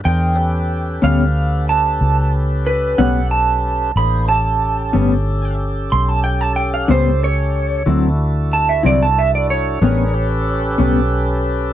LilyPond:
<<
  \new Staff \with { instrumentName = "Clean electric guitar" } { \time 12/8 \key a \mixolydian \tempo 4. = 62 g''4. f''4 a''4 r8 b'8 fis''8 a''4 | b''8 a''2 r8 c'''16 a''16 g''16 a''16 g''16 f''16 c''8 cis''4 | r4 a''16 e''16 d''16 a''16 e''16 d''16 cis''2. r8 | }
  \new Staff \with { instrumentName = "Tonewheel organ" } { \time 12/8 \key a \mixolydian <d' gis' bes' c''>8 <cis' g' a' b'>1~ <cis' g' a' b'>4. | <bes d' gis' c''>8 <cis' g' a'>1~ <cis' g' a'>4. | <d' e' fis' a'>2. <d' gis' bes' b'>8 <cis' g' a' b'>2~ <cis' g' a' b'>8 | }
  \new Staff \with { instrumentName = "Clean electric guitar" } { \time 12/8 \key a \mixolydian r4. <a, g b cis'>8 r2 r8 <a, g b cis'>8 r4 | r4. <a, g b cis'>8 r2 r8 <a, g b cis'>8 r4 | <d fis c' e'>8 r4 <d fis c' e'>8 r4 <a, g b cis'>8 r4 <a, g b cis'>8 r4 | }
  \new Staff \with { instrumentName = "Fingered electric bass" } { \clef bass \time 12/8 \key a \mixolydian e,4. d,4. cis,4. b,,4. | a,,4. g,,4. b,,4. cis,4. | d,4. c,4. a,,4. b,,4. | }
>>